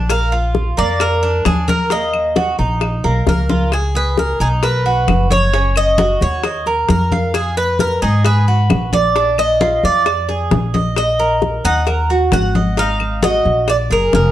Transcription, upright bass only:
0.00 0.71 A#1 medium
0.78 1.42 F2 medium
1.46 2.53 D#2 medium
2.59 3.01 A#1 medium
3.04 3.25 B1 medium
3.27 4.34 C#2 medium
4.40 5.04 B1 medium
5.08 6.15 F#1 medium
6.21 6.85 D#2 medium
6.89 7.96 F2 medium
8.02 8.66 G#2 medium
8.70 9.77 A#1 medium
9.83 10.47 F2 medium
10.51 11.58 A#1 medium
11.65 12.28 D#2 medium
12.32 13.39 G#1 medium
13.45 13.87 A#1 medium
13.91 14.12 F#1 medium
14.13 14.32 F1 medium

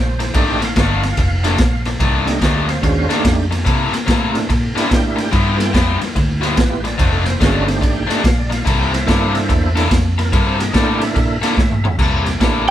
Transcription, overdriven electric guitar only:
0.19 muted overdriven electric guitar stroke medium
0.34 0.61 F2 medium
0.34 0.61 D#3 loud
0.34 0.61 A3 medium
0.34 0.61 D4 loud
0.62 muted overdriven electric guitar stroke soft
0.76 1.03 F2 medium
0.76 1.03 D#3 medium
0.76 1.02 A3 medium
0.76 1.02 D4 loud
1.03 muted overdriven electric guitar stroke soft
1.18 muted overdriven electric guitar stroke medium
1.44 1.57 F2 medium
1.44 1.58 D#3 medium
1.44 1.58 A3 medium
1.44 1.58 D4 loud
1.58 muted overdriven electric guitar stroke soft
1.86 muted overdriven electric guitar stroke medium
2.00 2.27 F2 medium
2.00 2.27 D#3 loud
2.00 2.26 A3 loud
2.00 2.26 D4 loud
2.27 muted overdriven electric guitar stroke soft
2.41 2.68 F2 medium
2.41 2.67 D#3 medium
2.41 2.68 A3 loud
2.41 2.67 D4 loud
2.68 muted overdriven electric guitar stroke medium
2.83 muted overdriven electric guitar stroke medium
3.09 3.23 F2 medium
3.09 3.23 D#3 medium
3.09 3.23 A3 medium
3.09 3.23 D4 medium
3.24 muted overdriven electric guitar stroke soft
3.51 muted overdriven electric guitar stroke medium
3.65 3.92 C3 loud
3.65 3.92 A#3 loud
3.65 3.92 E4 medium
3.65 3.92 A4 loud
3.93 muted overdriven electric guitar stroke medium
4.06 4.34 C3 loud
4.06 4.32 A#3 loud
4.06 4.32 E4 loud
4.06 4.32 A4 loud
4.33 muted overdriven electric guitar stroke medium
4.49 muted overdriven electric guitar stroke soft
4.76 4.89 C3 medium
4.76 4.89 A#3 medium
4.76 4.89 E4 medium
4.76 4.90 A4 medium
4.90 muted overdriven electric guitar stroke soft
5.16 muted overdriven electric guitar stroke medium
5.31 5.59 G2 medium
5.31 5.57 F3 loud
5.31 5.57 B3 medium
5.31 5.57 E4 loud
5.58 muted overdriven electric guitar stroke medium
5.73 6.00 G2 medium
5.73 6.01 F3 medium
5.73 6.00 B3 loud
5.73 6.00 E4 loud
6.01 muted overdriven electric guitar stroke medium
6.15 muted overdriven electric guitar stroke soft
6.41 6.56 G2 medium
6.41 6.56 F3 medium
6.41 6.57 B3 loud
6.41 6.57 E4 loud
6.57 muted overdriven electric guitar stroke medium
6.84 muted overdriven electric guitar stroke medium
6.98 7.25 F2 loud
6.98 7.25 D#3 medium
6.98 7.25 A3 loud
6.98 7.24 D4 loud
7.25 muted overdriven electric guitar stroke medium
7.40 7.67 F2 loud
7.40 7.66 D#3 loud
7.40 7.65 A3 loud
7.40 7.65 D4 loud
7.66 muted overdriven electric guitar stroke soft
7.81 muted overdriven electric guitar stroke soft
8.07 8.22 F2 medium
8.07 8.22 D#3 medium
8.07 8.22 A3 medium
8.07 8.23 D4 loud
8.23 muted overdriven electric guitar stroke medium
8.50 muted overdriven electric guitar stroke medium
8.65 8.92 C3 medium
8.65 8.92 A#3 medium
8.65 8.91 E4 loud
8.65 8.91 A4 loud
8.92 muted overdriven electric guitar stroke soft
9.07 9.34 C3 medium
9.07 9.34 A#3 loud
9.07 9.33 E4 loud
9.07 9.33 A4 loud
9.34 muted overdriven electric guitar stroke soft
9.49 muted overdriven electric guitar stroke medium
9.76 9.89 C3 medium
9.76 9.90 A#3 medium
9.76 9.91 E4 loud
9.76 9.90 A4 loud
9.91 muted overdriven electric guitar stroke soft
10.18 muted overdriven electric guitar stroke medium
10.33 10.59 C3 loud
10.33 10.59 A#3 loud
10.33 10.58 E4 loud
10.33 10.58 A4 loud
10.59 muted overdriven electric guitar stroke medium
10.73 11.00 C3 medium
10.73 11.01 A#3 loud
10.73 11.00 E4 medium
10.73 11.00 A4 loud
11.01 muted overdriven electric guitar stroke medium
11.15 muted overdriven electric guitar stroke medium
11.42 11.56 C3 medium
11.42 11.57 A#3 medium
11.42 11.57 E4 loud
11.42 11.57 A4 loud
11.57 muted overdriven electric guitar stroke medium
11.84 muted overdriven electric guitar stroke medium
11.99 12.26 C3 medium
11.99 12.25 A#3 medium
11.99 12.25 E4 loud
11.99 12.25 A4 loud
12.26 muted overdriven electric guitar stroke medium
12.40 12.67 C3 medium
12.40 12.66 A#3 medium
12.40 12.66 E4 loud
12.40 12.65 A4 medium
12.66 muted overdriven electric guitar stroke soft

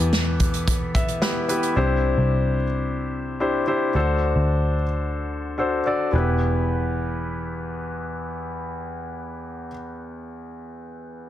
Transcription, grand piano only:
0.00 0.37 E3 medium
0.00 1.22 B3 medium
0.00 1.22 E4 medium
0.00 1.22 G4 medium
0.00 1.78 A4 medium
0.00 1.22 B4 medium
0.95 1.20 E5 medium
1.22 1.44 B3 medium
1.22 1.44 E4 medium
1.22 1.44 G4 medium
1.22 1.44 B4 medium
1.22 1.73 G5 medium
1.48 1.71 B3 medium
1.48 1.71 E4 medium
1.48 1.71 G4 medium
1.48 1.71 B4 medium
1.76 2.54 C3 medium
1.76 2.64 D4 medium
1.76 2.64 E4 medium
1.76 2.64 G4 medium
1.76 2.64 C5 medium
3.40 3.62 D4 medium
3.40 3.62 E4 medium
3.40 3.62 G4 medium
3.40 3.63 C5 medium
3.67 3.89 D4 medium
3.67 3.89 E4 medium
3.67 3.89 G4 medium
3.67 3.90 C5 medium
3.95 4.73 D3 medium
3.95 4.82 D4 medium
3.95 4.82 F#4 medium
3.95 4.83 A4 medium
3.95 4.83 C5 medium
5.58 5.80 D4 medium
5.58 5.80 F#4 medium
5.58 5.81 A4 medium
5.58 5.81 C5 medium
5.86 6.08 D4 medium
5.86 6.08 F#4 medium
5.86 6.08 A4 medium
5.86 6.08 D5 medium
6.11 9.69 E2 medium
6.11 9.67 B3 medium
6.11 9.68 E4 medium
6.11 9.69 G4 medium
6.15 9.71 B4 medium

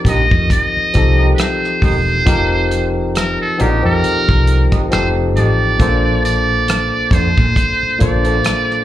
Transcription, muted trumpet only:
0.08 0.48 D#5 medium
0.52 1.29 D#5 medium
1.35 1.42 B4 medium
1.40 1.83 C5 medium
1.84 2.87 C5 medium
3.17 3.39 A#4 medium
3.41 3.63 A4 medium
3.61 3.85 G4 medium
3.86 4.69 A#4 medium
4.93 5.09 C5 medium
5.37 6.20 D5 medium
6.25 7.15 D5 loud
7.13 8.01 C5 medium
8.01 8.84 D5 medium

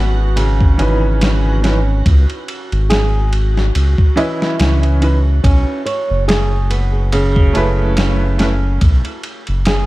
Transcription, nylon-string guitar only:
0.00 0.33 B3 medium
0.36 1.59 C#3 medium
1.64 2.04 C#4 medium
2.90 3.30 G#4 medium
4.17 4.55 E4 medium
4.59 5.40 C#4 medium
5.44 5.82 C#4 medium
5.86 6.24 C#5 medium
6.28 6.68 G#4 medium
6.70 7.09 B3 medium
7.13 8.36 C#3 loud
8.40 8.80 C#4 medium
9.66 9.86 G#4 medium

